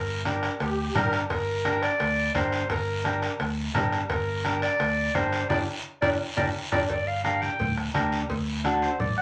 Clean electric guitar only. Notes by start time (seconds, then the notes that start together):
0.25 D4 G4 A#4
0.95 D4 G4 A#4
1.65 D4 G4 A#4
2.35 D4 G4 A#4
3.04 D4 G4 A#4
3.75 D4 G4 A#4
4.45 D4 G4 A#4
5.15 D4 G4 A#4
5.50 D4 G4 A#4
6.02 D4 G4 A#4
6.37 D4 G4 A#4
6.72 D4 G4 A#4
7.24 D4 G4 A#4
7.94 D4 G4 A#4
8.64 D4 F#4 A4
8.83 C5
9.00 D5
9.18 F#5